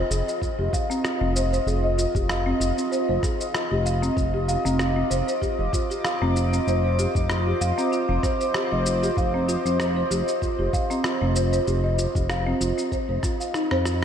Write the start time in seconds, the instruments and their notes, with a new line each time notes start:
Already playing: analog synth pad F4 D#5 G5
0.10 analog synth bass F1, marimba G#4, shaker
0.27 marimba D#5, shaker
0.42 marimba F4, kick, shaker
0.59 analog synth bass F1, marimba G4
0.73 marimba F5, kick, shaker
0.90 marimba C4, shaker
1.04 marimba F4, cross-stick, shaker
1.21 analog synth bass F1, marimba C4
1.36 marimba C5, shaker
1.53 marimba C5, shaker
1.67 analog synth bass F1, marimba G#4, shaker
1.84 marimba D#5
1.98 marimba F4, shaker
2.15 analog synth bass F1, marimba G4, kick, shaker
2.29 marimba F5, cross-stick, shaker
2.46 marimba C4
2.60 analog synth bass F1, marimba F4, shaker
2.77 marimba C4, shaker
2.92 marimba C5, shaker
3.09 analog synth bass F1, marimba C5
3.23 marimba G#4, kick, cross-stick, shaker
3.40 marimba D#5, shaker
3.54 marimba F4, cross-stick, shaker
3.71 analog synth bass F1, marimba G4
3.85 marimba F5, shaker
4.03 marimba C4, shaker
4.17 analog synth bass F1, marimba F4, kick, shaker
4.34 marimba G4
4.39 analog synth pad D6
4.48 marimba F5, shaker
4.65 analog synth bass F1, marimba C4, shaker
4.79 marimba F4, cross-stick, shaker
4.96 marimba C4, analog synth pad C5
5.10 analog synth bass F1, marimba C5, shaker
5.27 marimba C5, shaker
5.42 marimba G4, kick, shaker
5.59 analog synth bass F1, marimba D#5
5.73 marimba F4, kick, shaker
5.90 marimba G4, shaker
6.05 marimba F5, cross-stick, shaker
6.22 analog synth bass F1, marimba C4
6.36 marimba F4, shaker
6.53 marimba C4, shaker
6.67 analog synth bass F1, marimba C5, shaker
6.84 marimba C5
6.99 marimba G4, shaker
7.15 analog synth bass F1, marimba D#5, kick, shaker
7.30 marimba F4, cross-stick, shaker
7.47 marimba G4
7.61 analog synth bass F1, marimba F5, shaker
7.78 marimba C4, shaker
7.92 marimba F4, shaker
8.09 analog synth bass F1, marimba C4
8.23 marimba C5, kick, cross-stick, shaker
8.40 marimba C5, shaker
8.54 marimba G4, cross-stick, shaker
8.72 analog synth bass F1, marimba D#5
8.86 marimba F4, shaker
9.03 marimba G4, shaker
9.17 analog synth bass F1, marimba F5, kick, shaker
9.34 marimba C4
9.48 marimba F4, shaker
9.65 analog synth bass F1, marimba C4, shaker
9.80 marimba C5, cross-stick, shaker
9.97 marimba C5
10.11 analog synth bass F1, marimba G4, shaker
10.28 marimba D#5, shaker
10.42 marimba F4, kick, shaker
10.59 analog synth bass F1, marimba G4
10.73 marimba F5, kick, shaker
10.90 marimba C4, shaker
11.04 marimba F4, cross-stick, shaker
11.21 analog synth bass F1, marimba C4
11.36 marimba C5, shaker
11.53 marimba C5, shaker
11.67 analog synth bass F1, marimba G4, shaker
11.84 marimba D#5
11.98 marimba F4, shaker
12.15 analog synth bass F1, marimba G4, kick, shaker
12.30 marimba F5, cross-stick, shaker
12.47 marimba C4
12.61 analog synth bass F1, marimba F4, shaker
12.78 marimba C4, shaker
12.92 marimba C5, kick, shaker
13.09 analog synth bass F1, marimba C5
13.23 marimba F4, kick, cross-stick, shaker
13.40 marimba F5, shaker
13.54 marimba D#4, cross-stick, shaker
13.71 analog synth bass F2, marimba C5, cross-stick
13.85 marimba F4, cross-stick, shaker